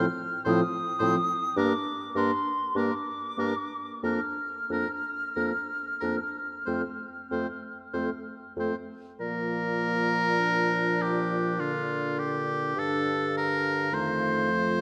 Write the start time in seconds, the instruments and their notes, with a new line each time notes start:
Already playing: flute F6
0.45 bassoon A2, french horn F3, clarinet C4, oboe C5, flute D#6
0.99 bassoon A2, french horn F3, clarinet C4, oboe C5
1.56 bassoon G2, french horn A#3, clarinet D4, oboe A#4, flute D6
2.15 bassoon G2, french horn A#3, clarinet D4, oboe A#4, flute C6
2.75 bassoon G2, french horn A#3, clarinet D4, oboe A#4, flute D6
3.38 bassoon G2, french horn A#3, clarinet D4, oboe A#4
4.03 bassoon F2, french horn A#3, clarinet D4, oboe A#4, flute F6
4.70 bassoon F2, french horn A#3, clarinet D4, oboe A#4
5.36 bassoon F2, french horn A#3, clarinet D4, oboe A#4
6.00 bassoon F2, french horn A#3, clarinet D4, oboe A#4
6.66 bassoon F2, french horn A3, clarinet C4, oboe C5
7.31 bassoon F2, french horn A3, clarinet C4, oboe C5
7.93 bassoon F2, french horn A3, clarinet C4, oboe C5
8.57 bassoon F2, french horn A3, clarinet C4, oboe C5
9.20 bassoon A#2, french horn F3, clarinet A#3, oboe A#4, flute D5
10.39 clarinet D4
11.02 oboe G4
11.59 french horn D3, oboe F4
12.19 oboe G4
12.75 bassoon G2, french horn D3, clarinet D4, oboe A4, flute F5
13.37 oboe A#4
13.92 bassoon F2, french horn D#3, clarinet A3, oboe C5
14.50 french horn F3